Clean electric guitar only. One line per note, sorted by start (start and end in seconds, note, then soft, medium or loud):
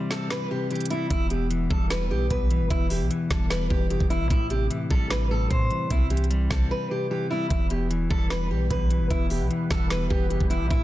0.00 0.49 C3 medium
0.00 0.69 E3 medium
0.00 0.89 G3 medium
0.11 1.11 C4 medium
0.51 1.11 C3 medium
0.71 1.11 E3 medium
0.91 1.11 G3 medium
1.11 2.09 E2 loud
1.31 2.29 B2 medium
1.50 2.49 E3 medium
1.70 2.70 G3 medium
2.11 2.69 E2 medium
2.30 2.89 B2 medium
2.51 3.09 E3 medium
2.71 3.69 E2 loud
2.90 3.89 B2 medium
3.11 4.09 E3 medium
3.31 4.31 G3 medium
3.71 4.30 E2 medium
3.91 4.31 B2 medium
4.11 4.30 E3 medium
4.31 5.29 A2 loud
4.51 5.49 C3 medium
4.71 5.69 E3 medium
4.91 5.91 G3 medium
5.30 5.90 A2 medium
5.50 5.89 C3 medium
5.71 5.90 E3 medium
5.91 6.89 C3 medium
6.11 7.09 E3 medium
6.30 7.29 G3 loud
6.51 7.50 C4 medium
6.91 7.50 C3 medium
7.10 7.50 E3 medium
7.30 7.50 G3 medium
7.71 8.69 B2 medium
7.90 8.89 E3 medium
8.10 9.10 G3 medium
8.51 9.09 E2 medium
8.70 9.29 B2 medium
8.91 9.49 E3 medium
9.30 10.29 B2 medium
9.50 10.49 E3 medium
9.71 10.71 G3 medium
10.11 10.70 E2 medium
10.30 10.70 B2 medium
10.50 10.70 E3 medium
10.70 10.84 A2 loud